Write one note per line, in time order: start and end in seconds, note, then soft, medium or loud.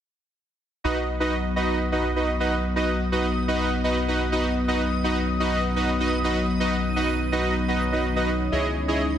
0.84 8.50 B1 medium
0.84 8.48 F#3 medium
0.84 8.48 B3 medium
0.84 0.98 D#4 loud
0.84 9.18 D#4 medium
0.84 0.98 F#4 medium
0.84 0.98 B4 medium
0.84 8.48 B4 medium
0.84 0.98 D#5 loud
0.84 4.64 D#5 medium
0.84 9.18 D#6 medium
1.20 1.34 D#4 medium
1.20 1.34 F#4 medium
1.20 1.34 B4 medium
1.20 1.34 D#5 loud
1.56 1.78 D#4 loud
1.56 1.78 F#4 medium
1.56 1.78 B4 medium
1.56 1.78 D#5 loud
1.92 2.06 D#4 medium
1.92 2.06 F#4 medium
1.92 2.06 B4 medium
1.92 2.06 D#5 medium
2.16 2.30 D#4 medium
2.16 2.30 F#4 medium
2.16 2.30 B4 medium
2.16 2.30 D#5 medium
2.40 2.54 D#4 medium
2.40 2.54 F#4 medium
2.40 2.54 B4 medium
2.40 2.54 D#5 loud
2.76 2.90 D#4 medium
2.76 2.90 F#4 medium
2.76 2.90 B4 medium
2.76 2.90 D#5 loud
3.12 3.26 D#4 medium
3.12 3.26 F#4 medium
3.12 3.26 B4 medium
3.12 3.26 D#5 loud
3.48 3.70 D#4 medium
3.48 3.70 F#4 medium
3.48 3.70 B4 medium
3.48 3.70 D#5 loud
3.84 3.98 D#4 medium
3.84 3.98 F#4 medium
3.84 3.98 B4 medium
3.84 3.98 D#5 medium
4.08 4.22 D#4 medium
4.08 4.22 F#4 medium
4.08 4.22 B4 medium
4.08 4.22 D#5 medium
4.32 4.46 D#4 loud
4.32 4.46 F#4 medium
4.32 4.46 B4 medium
4.32 4.46 D#5 loud
4.68 4.82 D#4 loud
4.68 4.82 F#4 medium
4.68 4.82 B4 medium
4.68 9.18 C#5 medium
4.68 4.82 D#5 loud
5.04 5.18 D#4 medium
5.04 5.18 F#4 medium
5.04 5.18 B4 medium
5.04 5.18 D#5 loud
5.40 5.62 D#4 medium
5.40 5.62 F#4 medium
5.40 5.62 B4 medium
5.40 5.62 D#5 loud
5.76 5.90 D#4 medium
5.76 5.90 F#4 medium
5.76 5.90 B4 medium
5.76 5.90 D#5 medium
6.00 6.14 D#4 medium
6.00 6.14 F#4 medium
6.00 6.14 B4 medium
6.00 6.14 D#5 medium
6.24 6.38 D#4 medium
6.24 6.38 F#4 medium
6.24 6.38 B4 medium
6.24 6.38 D#5 loud
6.60 6.74 D#4 loud
6.60 6.74 F#4 medium
6.60 6.74 B4 medium
6.60 6.74 D#5 loud
6.96 7.10 D#4 medium
6.96 7.10 F#4 medium
6.96 7.10 B4 medium
6.96 7.10 D#5 loud
7.32 7.54 D#4 medium
7.32 7.54 F#4 medium
7.32 7.54 B4 medium
7.32 7.54 D#5 loud
7.68 7.82 D#4 medium
7.68 7.82 F#4 medium
7.68 7.82 B4 medium
7.68 7.82 D#5 medium
7.92 8.06 D#4 medium
7.92 8.06 F#4 medium
7.92 8.06 B4 medium
7.92 8.06 D#5 medium
8.16 8.30 D#4 medium
8.16 8.30 F#4 medium
8.16 8.30 B4 medium
8.16 8.30 D#5 loud
8.52 9.18 C#2 medium
8.52 9.18 G#3 medium
8.52 9.18 C#4 medium
8.52 8.66 E4 medium
8.52 9.18 E4 medium
8.52 8.66 G#4 medium
8.52 8.66 C#5 medium
8.52 8.66 D#5 loud
8.88 9.02 E4 medium
8.88 9.02 G#4 medium
8.88 9.02 C#5 medium
8.88 9.02 D#5 loud